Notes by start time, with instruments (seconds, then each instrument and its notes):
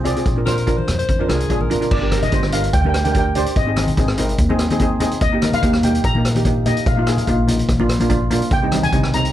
Already playing: upright bass C2
0.04 steel pan C4 F4 G#4 D5, closed hi-hat, low conga
0.16 steel pan C4 F4 G#4, closed hi-hat
0.26 upright bass A#1, kick, closed hi-hat
0.36 steel pan D4 F4 A#4
0.45 steel pan D4 F4 C5, alto saxophone A#4, cross-stick, closed hi-hat, high conga, low conga
0.58 closed hi-hat
0.67 steel pan D4 F4 A#4, kick, closed hi-hat
0.78 alto saxophone C5, high conga
0.88 upright bass F2, cross-stick, closed hi-hat, low conga
0.98 alto saxophone C5, closed hi-hat
1.09 upright bass F2, kick, closed hi-hat, high conga
1.19 steel pan D4 F4 A#4
1.29 upright bass C2, steel pan D4 F4 A#4, alto saxophone G#4, cross-stick, closed hi-hat, high conga
1.40 closed hi-hat
1.50 upright bass A#1, steel pan D4 F4 G#4, kick, closed hi-hat
1.61 alto saxophone A#4, high conga
1.70 upright bass G#1, steel pan D4 F4 A#4, closed hi-hat, low conga
1.81 steel pan D4 F4 A#4, closed hi-hat
1.91 upright bass G1, steel pan D5, kick, crash
2.02 steel pan D4 G4 A#4
2.11 steel pan D4 G4 A#4, cross-stick, closed hi-hat, high conga
2.22 steel pan D#5, closed hi-hat, high conga, low conga
2.32 upright bass G1, steel pan D4 G4 C5, kick, closed hi-hat
2.43 cross-stick
2.52 steel pan D4 G4 A#4 F5, closed hi-hat
2.64 closed hi-hat
2.73 upright bass D2, steel pan G5, kick, closed hi-hat
2.82 steel pan D4 G5, high conga
2.86 steel pan G4 A#4 G5
2.94 steel pan G5, cross-stick, closed hi-hat
3.04 steel pan D4 G4 A#4 G5, closed hi-hat, high conga
3.12 steel pan D4 G5, kick, closed hi-hat
3.16 steel pan G4 A#4 G5
3.35 steel pan D4 G4 C5 D5, closed hi-hat, low conga
3.46 closed hi-hat
3.56 upright bass G#1, steel pan D#5, kick, closed hi-hat
3.67 steel pan C4 D#4 G#4
3.76 steel pan C4 D#4 G#4, cross-stick, closed hi-hat, high conga
3.88 closed hi-hat, high conga, low conga
3.97 upright bass G#1, steel pan C4 D#4 G#4, kick, closed hi-hat
4.08 cross-stick
4.18 steel pan C4 D#4 A#4, closed hi-hat, low conga
4.29 closed hi-hat
4.38 upright bass D#2, kick, closed hi-hat
4.49 steel pan C4 D#4 G#4, high conga
4.59 cross-stick, closed hi-hat
4.70 steel pan C4 D#4 G#4, closed hi-hat, high conga
4.79 steel pan C4 D#4 G#4, kick, closed hi-hat
5.00 steel pan C4 D#4 G#4, closed hi-hat, low conga
5.11 closed hi-hat
5.21 upright bass D#2, steel pan D#5, kick, closed hi-hat
5.32 steel pan A#3 D#4 G4
5.42 steel pan A#3 D#4 A#4, cross-stick, closed hi-hat, high conga
5.53 steel pan F5, closed hi-hat, high conga, low conga
5.63 upright bass D#2, steel pan A#3 D#4 G4, kick, closed hi-hat
5.73 cross-stick
5.83 steel pan A#3 D#4 G4 G5, closed hi-hat, low conga
5.95 closed hi-hat
6.04 upright bass A#1, steel pan A#5, kick, closed hi-hat
6.15 steel pan A#3 D#4 A#4, high conga
6.25 cross-stick, closed hi-hat
6.35 steel pan A#3 D#4 G4, closed hi-hat, high conga
6.45 steel pan A#3 D#4 G4, kick, closed hi-hat
6.66 steel pan A#3 D#4 G4 D#5, closed hi-hat, low conga
6.77 closed hi-hat
6.86 upright bass A#1, steel pan F5, kick, closed hi-hat
6.95 steel pan A#3 D#4 F4 F5
7.02 steel pan F5
7.07 steel pan A#3 D#4 G#4 F5, cross-stick, closed hi-hat
7.17 steel pan F5, closed hi-hat, low conga
7.26 upright bass A#1, steel pan A#3 D#4 F4 F5, kick, closed hi-hat
7.33 steel pan F5
7.47 steel pan A#3 D#4 F4, closed hi-hat, low conga
7.59 closed hi-hat
7.68 upright bass A#1, kick, cross-stick, closed hi-hat, high conga
7.80 steel pan A#3 D4 F4, high conga
7.89 cross-stick, closed hi-hat
8.00 steel pan A#3 D4 F4, closed hi-hat, high conga
8.09 steel pan A#3 D4 F4, kick, closed hi-hat
8.30 steel pan A#3 D4 F4, closed hi-hat, low conga
8.42 closed hi-hat
8.51 upright bass C2, steel pan G5, kick, closed hi-hat
8.63 steel pan G3 C4 D#4
8.72 steel pan G3 C4 D#4, cross-stick, closed hi-hat, high conga
8.83 steel pan G#5, closed hi-hat, high conga, low conga
8.92 upright bass C2, steel pan G3 C4 D#4, kick, closed hi-hat
9.03 cross-stick
9.13 steel pan G3 C4 D#4 A#5, closed hi-hat, low conga
9.25 closed hi-hat